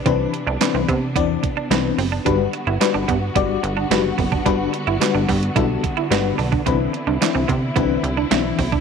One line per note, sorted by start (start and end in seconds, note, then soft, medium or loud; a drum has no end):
0.00 2.22 C3 medium
0.00 2.22 E3 medium
0.00 8.80 B3 medium
0.00 2.22 D4 medium
0.06 0.28 C2 loud
0.06 0.32 E3 medium
0.06 0.14 C4 medium
0.06 0.32 C4 medium
0.06 0.32 D4 medium
0.06 0.32 B4 loud
0.06 kick loud
0.06 closed hi-hat medium
0.33 muted clean electric guitar stroke soft
0.33 closed hi-hat medium
0.47 0.58 C2 loud
0.47 0.56 D4 medium
0.61 0.87 E3 medium
0.61 0.87 C4 medium
0.61 0.87 D4 medium
0.61 0.87 B4 medium
0.61 muted clean electric guitar stroke soft
0.61 snare loud
0.61 clap loud
0.61 closed hi-hat medium
0.74 0.85 C2 loud
0.74 0.83 C4 medium
0.88 1.17 C3 medium
0.88 0.97 B3 medium
0.88 kick medium
0.88 closed hi-hat medium
1.16 1.38 E2 loud
1.16 1.42 E3 medium
1.16 1.24 B3 medium
1.16 1.42 C4 medium
1.16 1.42 D4 medium
1.16 1.42 D5 loud
1.16 kick loud
1.16 closed hi-hat medium
1.43 muted clean electric guitar stroke soft
1.43 kick medium
1.43 closed hi-hat medium
1.57 1.65 D4 medium
1.70 1.92 C2 medium
1.70 1.97 E3 medium
1.70 1.97 C4 medium
1.70 1.97 D4 medium
1.70 1.97 B4 medium
1.70 muted clean electric guitar stroke soft
1.70 snare loud
1.70 clap medium
1.70 closed hi-hat medium
1.98 2.20 F#1 medium
1.98 2.07 C4 medium
1.98 open hi-hat medium
2.12 2.21 D4 medium
2.25 2.48 G1 loud
2.25 8.80 D3 medium
2.25 2.51 G3 loud
2.25 6.62 G3 medium
2.25 2.52 D4 medium
2.25 2.34 D4 medium
2.25 2.52 F#4 medium
2.25 6.62 F#4 medium
2.25 2.52 B4 loud
2.25 kick loud
2.25 closed hi-hat medium
2.53 muted clean electric guitar stroke soft
2.53 closed hi-hat medium
2.67 2.78 G1 loud
2.67 2.76 E4 medium
2.80 3.07 G3 medium
2.80 3.07 D4 medium
2.80 3.07 F#4 medium
2.80 3.07 B4 medium
2.80 muted clean electric guitar stroke soft
2.80 snare loud
2.80 clap loud
2.80 closed hi-hat medium
2.94 3.05 G1 medium
2.94 3.03 D4 medium
3.08 3.30 G2 loud
3.08 3.17 B3 medium
3.08 kick medium
3.08 closed hi-hat medium
3.35 3.58 G1 medium
3.35 3.62 G3 medium
3.35 3.44 B3 medium
3.35 3.62 D4 medium
3.35 3.62 F#4 medium
3.35 3.62 D5 loud
3.35 kick loud
3.35 closed hi-hat loud
3.63 3.85 G1 loud
3.63 muted clean electric guitar stroke soft
3.63 closed hi-hat medium
3.77 3.85 D4 medium
3.90 4.13 F#1 medium
3.90 4.17 G3 medium
3.90 4.17 D4 medium
3.90 4.17 F#4 medium
3.90 4.17 B4 loud
3.90 muted clean electric guitar stroke soft
3.90 snare loud
3.90 clap medium
3.90 closed hi-hat loud
4.18 4.40 F#1 medium
4.18 4.27 B3 medium
4.18 kick medium
4.18 open hi-hat medium
4.32 4.41 D4 medium
4.32 kick medium
4.45 4.68 G1 loud
4.45 4.72 G3 loud
4.45 4.54 D4 medium
4.45 4.72 D4 loud
4.45 4.72 F#4 medium
4.45 4.72 B4 loud
4.45 kick loud
4.45 closed hi-hat medium
4.73 muted clean electric guitar stroke soft
4.73 closed hi-hat medium
4.87 4.98 G1 medium
4.87 4.96 E4 medium
5.00 5.27 G3 medium
5.00 5.27 D4 medium
5.00 5.27 F#4 medium
5.00 5.27 B4 medium
5.00 muted clean electric guitar stroke soft
5.00 snare loud
5.00 clap loud
5.00 closed hi-hat medium
5.15 5.26 G1 loud
5.15 5.23 D4 medium
5.29 5.51 G2 loud
5.29 5.37 B3 medium
5.29 kick medium
5.29 open hi-hat medium
5.43 closed hi-hat medium
5.56 5.78 B1 loud
5.56 5.82 G3 medium
5.56 5.82 D4 medium
5.56 5.64 E4 medium
5.56 5.82 F#4 medium
5.56 5.82 A4 loud
5.56 kick loud
5.56 closed hi-hat loud
5.83 muted clean electric guitar stroke soft
5.83 kick medium
5.83 closed hi-hat medium
5.97 6.06 E4 medium
6.11 6.33 G1 loud
6.11 6.37 G3 medium
6.11 6.37 D4 medium
6.11 6.37 F#4 medium
6.11 6.37 B4 loud
6.11 muted clean electric guitar stroke soft
6.11 snare loud
6.11 clap medium
6.11 closed hi-hat medium
6.38 6.60 B1 medium
6.38 6.47 D4 medium
6.38 open hi-hat medium
6.52 6.61 D4 medium
6.52 kick medium
6.66 6.88 C2 loud
6.66 6.92 E3 loud
6.66 6.75 C4 medium
6.66 8.80 C4 medium
6.66 6.92 C4 medium
6.66 6.92 D4 medium
6.66 8.80 E4 medium
6.66 6.92 B4 loud
6.66 kick loud
6.66 closed hi-hat medium
6.93 muted clean electric guitar stroke soft
6.93 closed hi-hat medium
7.07 7.18 C2 loud
7.07 7.16 D4 medium
7.21 7.47 E3 medium
7.21 7.47 C4 medium
7.21 7.47 D4 medium
7.21 7.47 E4 medium
7.21 muted clean electric guitar stroke soft
7.21 snare loud
7.21 clap loud
7.21 closed hi-hat medium
7.35 7.46 C2 loud
7.35 7.43 C4 medium
7.48 7.71 C3 medium
7.48 7.57 B3 medium
7.48 kick medium
7.48 closed hi-hat medium
7.76 7.98 C2 loud
7.76 8.02 E3 medium
7.76 7.84 B3 medium
7.76 8.02 C4 medium
7.76 8.02 D4 medium
7.76 8.02 B4 loud
7.76 kick loud
7.76 closed hi-hat medium
8.03 8.25 C2 loud
8.03 muted clean electric guitar stroke soft
8.03 closed hi-hat medium
8.17 8.26 D4 medium
8.31 8.53 B1 loud
8.31 8.57 E3 medium
8.31 8.57 C4 medium
8.31 8.57 D4 medium
8.31 8.57 E4 loud
8.31 muted clean electric guitar stroke soft
8.31 snare loud
8.31 clap medium
8.31 closed hi-hat medium
8.59 8.80 B1 medium
8.59 8.67 C4 medium
8.59 kick medium
8.59 open hi-hat medium
8.72 8.80 D4 medium
8.72 kick medium